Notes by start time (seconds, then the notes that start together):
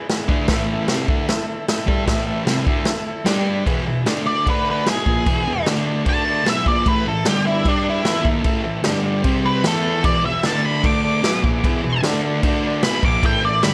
0.09 E4 G#4 B4, snare, crash
0.28 D3 A3 D4 E4 G#4 B4, kick
0.48 A2 E3 A3 E4 A4 E5, kick, snare, crash
0.72 E4 A4 E5
0.88 C3 G3 C4 E4 E5, snare, crash
0.92 A4
1.07 D3 A3 D4 E4 A4 E5, kick
1.29 E4 A4 E5, snare, crash
1.49 E4 A4 E5
1.68 E4 A4 E5, snare, crash
1.87 G3 D4 E4 G4 A4 E5, kick
2.05 A2 E3 A3 E4, kick, snare, crash
2.09 A4 E5
2.27 E4 A4 E5
2.46 C3 G3 C4 E4 A4 E5, snare, crash
2.66 D3 A3 D4 E4 A4 E5, kick
2.85 E4 A4 E5, snare, crash
3.07 E4 A4 E5
3.25 G3 D4 G4 D5 G5, snare, crash
3.46 D4 G4 D5 B5
3.65 E2 B2 E3 E4 G#4 B4, kick, crash
3.86 E2 B2 E4 G#4 B4
4.06 D3 A3 D4 A4 D5, snare, crash
4.26 D4 A4 D5
4.46 D3 A3 D4 A4 B4 D5, kick, crash
4.67 D4 A4 B4 D5
4.86 B2 F#3 B3 E4 G#4 B4, snare, crash
5.06 A#2 F3 A#3 E4 G#4 B4, kick
5.26 E2 B2 E3 E4 G#4 B4, kick, crash
5.46 E2 B2 E4 G#4 B4
5.65 D3 A3 D4 A4 D5, snare, crash
5.86 D4 A4 D5
6.05 D3 A3 D4 A4 D5 A5, kick, crash
6.28 D4 A4 D5
6.44 B2 F#3 B3 B4, snare, crash
6.49 E4 G#4 E5
6.66 A#2 F3 A#3 E4 G#4 B4 D5, kick
6.85 A2 E3 A3 E4 A4 B4, kick, crash
6.89 E5
7.05 A2 E3 E4 A4 E5
7.25 G2 D3 G3 D4 G4 D5, snare, crash
7.47 D4 E4 G4 D5
7.64 G3 D4 G4 D5, kick, crash
7.68 D4
7.83 D4 G4 D5
7.89 E4
8.04 E3 B3 E4 A4 E5, snare, crash
8.23 D#3 A#3 D#4 E4 A4 E5, kick
8.43 A2 E3 A3 E4 A4 E5, kick, crash
8.63 A2 E3 E4 A4 E5
8.83 G2 D3 G3 D4 G4 D5, snare, crash
9.05 D4 G4 D5
9.22 C3 G3 C4 G4 C5, kick, crash
9.41 C4 G4 C5
9.46 B4
9.61 E3 B3 E4 B4, snare, crash
9.66 B3 E4 A4
9.82 B3 E4 B4
10.02 E2 E4 G#4 B4 D5, kick, crash
10.06 B2 E3
10.22 E2 B2 E4 G#4 B4 E5
10.43 D3 A3 D4 A4 D5 A5, snare, crash
10.64 D4 A4 D5 B5
10.84 D3 A3 D4 A4 D5 D6, kick, crash
11.04 D4 A4 D5
11.24 B2 F#3 B3 E4 G#4 B4, snare, crash
11.44 A#2 F3 A#3 E4 G#4 B4, kick
11.64 E2 B2 E3 E4 G#4 B4, kick, crash
11.83 E2 B2 E4 G#4 B4
12.03 D3 A3 D4 A4 D5, snare, crash
12.25 D4 A4 D5
12.43 D3 A3 D4, kick, crash
12.47 D4 A4 D5
12.67 D4 A4 D5
12.83 B2 F#3 B3 G#4 B4 E5 B5, snare, crash
13.03 A#2 F3 A#3 G#4 B4 E5 D6, kick
13.23 A2 E3 A3 E4 A4 E5 G5, kick, crash
13.43 A2 E3 E4 A4 D5 E5
13.63 G2 D3 G3 D4 G4 D5 B5, snare, crash